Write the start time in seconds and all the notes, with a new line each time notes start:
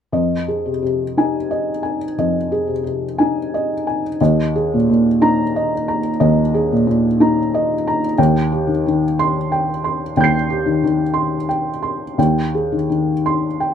0.12 F2 D#5
0.48 G#4
0.66 C3
0.82 C3
1.17 D#4 G#5
1.51 D#5
1.83 G#5
2.18 F2 D#5
2.52 G#4
2.68 C3
2.84 C3
3.18 D#4 G#5
3.54 D#5
3.87 G#5
4.21 D#2 D#5
4.56 G#4
4.74 A#2
4.90 A#2
5.21 D#4 A#5
5.56 D#5
5.88 A#5
6.20 D#2 D#5
6.54 G#4
6.72 A#2
6.87 A#2
7.20 D#4 A#5
7.54 D#5
7.87 A#5
8.18 D#2 G5
8.52 G4
8.67 D#3
8.87 D#3
9.19 C6
9.52 G5
9.84 C6
10.17 D#2 G5 G6
10.24 C7
10.50 G4
10.66 D#3
10.84 D#3
11.14 C6
11.49 G5
11.83 C6
12.18 D#2 G5
12.55 G#4
12.72 D#3
12.90 D#3
13.26 C6
13.60 G5